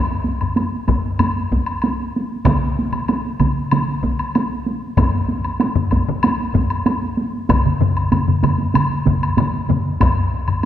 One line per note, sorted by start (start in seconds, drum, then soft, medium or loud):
0.09 taiko high soft
0.24 taiko high soft
0.41 taiko low-mid medium
0.41 taiko high soft
0.41 high woodblock soft
0.56 taiko high medium
0.56 high woodblock soft
0.72 taiko high soft
0.88 taiko medium
0.88 taiko low-mid medium
0.88 taiko high soft
0.88 high woodblock soft
1.19 taiko low-mid medium
1.19 taiko high medium
1.19 high woodblock soft
1.36 taiko high soft
1.52 taiko medium
1.52 taiko high soft
1.66 taiko high soft
1.66 high woodblock soft
1.82 taiko high medium
1.82 high woodblock soft
2.00 taiko high soft
2.16 taiko high soft
2.32 taiko high soft
2.45 taiko medium
2.45 taiko mid medium
2.45 taiko high medium
2.45 high woodblock soft
2.63 taiko high soft
2.79 taiko high soft
2.92 taiko mid medium
2.92 taiko high soft
2.92 high woodblock soft
3.08 taiko high medium
3.08 high woodblock soft
3.26 taiko high soft
3.40 taiko medium
3.40 taiko mid medium
3.40 taiko high soft
3.40 high woodblock soft
3.71 taiko mid medium
3.71 taiko high medium
3.71 high woodblock soft
3.89 taiko high soft
4.03 taiko medium
4.03 taiko high soft
4.19 taiko high soft
4.19 high woodblock soft
4.35 taiko high medium
4.35 high woodblock soft
4.51 taiko high soft
4.66 taiko high soft
4.83 taiko high soft
4.97 taiko medium
4.97 taiko low-mid medium
4.97 taiko high medium
4.97 high woodblock soft
5.14 taiko high soft
5.28 taiko high soft
5.44 taiko high soft
5.44 high woodblock soft
5.60 taiko high medium
5.60 high woodblock soft
5.75 taiko low-mid medium
5.75 taiko high soft
5.91 taiko medium
5.91 taiko high medium
5.91 high woodblock soft
6.08 taiko low-mid medium
6.23 taiko high medium
6.23 high woodblock medium
6.39 taiko high soft
6.55 taiko medium
6.55 taiko low-mid medium
6.55 taiko high medium
6.70 taiko high soft
6.70 high woodblock soft
6.86 taiko high medium
6.86 high woodblock soft
7.02 taiko high soft
7.17 taiko high soft
7.33 taiko high soft
7.49 taiko medium
7.49 taiko low-mid medium
7.49 taiko mid medium
7.49 taiko high medium
7.49 high woodblock medium
7.65 taiko low-mid medium
7.65 taiko mid medium
7.65 taiko high soft
7.81 taiko low-mid medium
7.81 taiko mid medium
7.96 taiko high soft
7.96 high woodblock soft
8.12 taiko low-mid medium
8.12 taiko mid medium
8.12 taiko high medium
8.12 high woodblock soft
8.27 taiko low-mid medium
8.27 taiko mid medium
8.27 taiko high soft
8.43 taiko low-mid medium
8.43 taiko mid medium
8.43 taiko high soft
8.43 high woodblock soft
8.58 taiko high soft
8.74 taiko low-mid medium
8.74 taiko mid medium
8.74 taiko high medium
8.74 high woodblock medium
8.89 taiko high soft
9.06 taiko medium
9.06 taiko low-mid medium
9.06 taiko mid medium
9.06 taiko high soft
9.22 taiko high soft
9.22 high woodblock soft
9.37 taiko low-mid medium
9.37 taiko mid medium
9.37 taiko high medium
9.37 high woodblock soft
9.54 taiko high soft
9.69 taiko low-mid medium
9.69 taiko mid medium
9.69 taiko high soft
10.00 taiko medium
10.00 taiko low-mid medium
10.00 taiko high medium
10.00 high woodblock medium
10.17 taiko high soft
10.48 taiko low-mid medium
10.48 taiko high soft
10.48 high woodblock soft